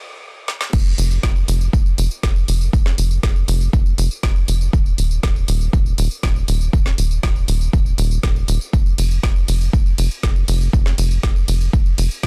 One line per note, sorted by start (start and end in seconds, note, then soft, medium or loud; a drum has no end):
0.48 snare medium
0.61 snare medium
0.73 0.94 F1 loud
0.73 kick loud
0.73 crash loud
0.73 tambourine soft
0.86 tambourine soft
0.98 1.19 F1 medium
0.98 open hi-hat loud
0.98 tambourine medium
1.11 tambourine soft
1.23 1.44 F1 medium
1.23 kick loud
1.23 snare loud
1.23 tambourine soft
1.36 tambourine soft
1.48 1.69 F1 medium
1.48 open hi-hat loud
1.48 tambourine medium
1.61 tambourine soft
1.73 1.94 F1 loud
1.73 kick loud
1.73 tambourine soft
1.86 tambourine soft
1.98 2.09 F1 loud
1.98 open hi-hat loud
1.98 tambourine medium
2.11 tambourine soft
2.23 2.44 F1 loud
2.23 kick loud
2.23 snare loud
2.23 tambourine soft
2.36 tambourine soft
2.48 2.69 F1 loud
2.48 open hi-hat medium
2.48 tambourine medium
2.61 tambourine soft
2.73 2.94 F1 loud
2.73 kick loud
2.73 tambourine soft
2.86 snare soft
2.86 tambourine soft
2.98 3.19 F1 medium
2.98 open hi-hat loud
2.98 tambourine medium
3.11 tambourine soft
3.23 3.44 F1 medium
3.23 kick loud
3.23 snare loud
3.23 tambourine soft
3.36 tambourine soft
3.48 3.69 F1 loud
3.48 open hi-hat loud
3.48 tambourine medium
3.61 tambourine soft
3.73 3.94 F1 loud
3.73 kick loud
3.73 tambourine soft
3.86 tambourine soft
3.98 4.09 F1 loud
3.98 open hi-hat loud
3.98 tambourine medium
4.11 tambourine soft
4.23 4.44 F1 loud
4.23 kick loud
4.23 snare loud
4.23 tambourine soft
4.36 tambourine soft
4.48 4.69 F1 medium
4.48 open hi-hat medium
4.48 tambourine medium
4.61 tambourine soft
4.73 4.94 D#1 loud
4.73 kick loud
4.73 tambourine soft
4.86 tambourine soft
4.98 5.19 D#1 medium
4.98 open hi-hat loud
4.98 tambourine medium
5.11 tambourine soft
5.23 5.44 D#1 medium
5.23 kick loud
5.23 snare loud
5.23 tambourine soft
5.36 tambourine soft
5.48 5.69 D#1 medium
5.48 open hi-hat loud
5.48 tambourine medium
5.61 tambourine soft
5.73 5.94 D#1 loud
5.73 kick loud
5.73 tambourine soft
5.86 tambourine soft
5.98 6.09 D#1 loud
5.98 open hi-hat loud
5.98 tambourine medium
6.11 tambourine soft
6.23 6.44 D#1 loud
6.23 kick loud
6.23 snare loud
6.23 tambourine soft
6.36 tambourine soft
6.48 6.69 D#1 loud
6.48 open hi-hat loud
6.48 tambourine medium
6.61 tambourine soft
6.73 6.94 D#1 loud
6.73 kick loud
6.73 tambourine soft
6.86 snare soft
6.86 tambourine soft
6.98 7.19 D#1 medium
6.98 open hi-hat loud
6.98 tambourine medium
7.11 tambourine soft
7.23 7.44 D#1 medium
7.23 kick loud
7.23 snare loud
7.23 tambourine soft
7.36 tambourine soft
7.48 7.69 D#1 loud
7.48 open hi-hat loud
7.48 tambourine medium
7.61 tambourine soft
7.73 7.94 D#1 loud
7.73 kick loud
7.73 tambourine soft
7.86 tambourine soft
7.98 8.19 D#1 loud
7.98 open hi-hat loud
7.98 tambourine medium
8.11 tambourine soft
8.23 8.44 D#1 medium
8.23 kick loud
8.23 snare loud
8.23 tambourine soft
8.36 tambourine soft
8.48 8.59 D#1 medium
8.48 open hi-hat loud
8.48 tambourine medium
8.61 tambourine soft
8.73 8.94 F1 loud
8.73 kick loud
8.73 tambourine soft
8.86 tambourine soft
8.98 9.19 F1 medium
8.98 open hi-hat loud
8.98 ride medium
8.98 tambourine medium
9.11 tambourine soft
9.23 9.44 F1 medium
9.23 kick loud
9.23 snare loud
9.23 tambourine soft
9.36 tambourine soft
9.48 9.69 F1 medium
9.48 open hi-hat loud
9.48 ride medium
9.48 tambourine medium
9.61 tambourine soft
9.73 9.94 F1 loud
9.73 kick loud
9.73 tambourine soft
9.86 tambourine soft
9.98 10.09 F1 loud
9.98 open hi-hat loud
9.98 ride medium
9.98 tambourine medium
10.11 tambourine soft
10.23 10.44 F1 medium
10.23 kick loud
10.23 snare loud
10.23 tambourine soft
10.36 tambourine soft
10.48 10.69 F1 medium
10.48 open hi-hat medium
10.48 ride medium
10.48 tambourine medium
10.61 tambourine soft
10.73 10.94 F1 loud
10.73 kick loud
10.73 tambourine soft
10.86 snare soft
10.86 tambourine soft
10.98 11.19 F1 medium
10.98 open hi-hat loud
10.98 ride medium
10.98 tambourine medium
11.11 tambourine soft
11.23 11.44 F1 medium
11.23 kick loud
11.23 snare loud
11.23 tambourine soft
11.36 tambourine soft
11.48 11.69 F1 medium
11.48 open hi-hat medium
11.48 ride medium
11.48 tambourine medium
11.61 tambourine soft
11.73 11.94 F1 loud
11.73 kick loud
11.73 tambourine soft
11.86 tambourine soft
11.98 12.09 F1 loud
11.98 open hi-hat loud
11.98 ride medium
11.98 tambourine medium
12.11 tambourine soft
12.23 12.27 F1 loud
12.23 kick loud
12.23 snare loud
12.23 tambourine soft